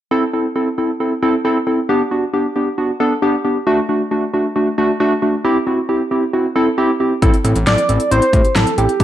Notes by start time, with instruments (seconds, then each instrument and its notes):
0.11 synth keys C4 E4 A4
0.34 synth keys C4 E4 A4
0.56 synth keys C4 E4 A4
0.78 synth keys C4 E4 A4
1.00 synth keys C4 E4 A4
1.22 synth keys C4 E4 A4
1.45 synth keys C4 E4 A4
1.67 synth keys C4 E4 A4
1.89 synth keys B3 D4 G4
2.11 synth keys B3 D4 F#4
2.33 synth keys B3 D4 G4
2.56 synth keys B3 D4 G4
2.78 synth keys B3 D4 F#4
3.00 synth keys B3 D4 A4
3.22 synth keys B3 D4 G4
3.44 synth keys B3 D4 G4
3.67 synth keys A3 D4 F#4
3.89 synth keys A3 D4 F#4
4.11 synth keys A3 D4 F#4
4.34 synth keys A3 D4 F#4
4.56 synth keys A3 D4 F#4
4.78 synth keys A3 D4 F#4
5.00 synth keys A3 D4 F#4
5.22 synth keys A3 D4 F#4
5.44 synth keys C4 E4 G4
5.67 synth keys C4 E4 F#4
5.89 synth keys C4 E4 G4
6.11 synth keys C4 E4 G4
6.33 synth keys C4 E4 F#4
6.56 synth keys C4 E4 A4
6.78 synth keys C4 E4 G4
7.00 synth keys C4 E4 G4
7.22 analog synth bass A1, synth keys C4 E4 A4, kick, closed hi-hat
7.34 closed hi-hat
7.45 analog synth bass A1, synth keys C4 E4 A4, closed hi-hat
7.56 analog synth bass A1, closed hi-hat
7.67 analog synth bass A1, synth keys C4 E4 A4, soft synth lead D5, snare, closed hi-hat
7.78 closed hi-hat
7.89 analog synth bass A1, synth keys C4 E4 A4, closed hi-hat
8.00 closed hi-hat
8.11 analog synth bass A1, synth keys C4 E4 C5, soft synth lead C5, closed hi-hat
8.22 closed hi-hat
8.33 analog synth bass A2, synth keys C4 E4 G4, kick, closed hi-hat
8.45 closed hi-hat
8.55 analog synth bass A1, synth keys C4 E4 A4, soft synth lead A4, snare, closed hi-hat
8.67 closed hi-hat
8.78 analog synth bass A1, synth keys C4 E4 A4, soft synth lead G4, closed hi-hat
8.89 closed hi-hat
9.00 analog synth bass G1, synth keys B3 D4 G4, kick, closed hi-hat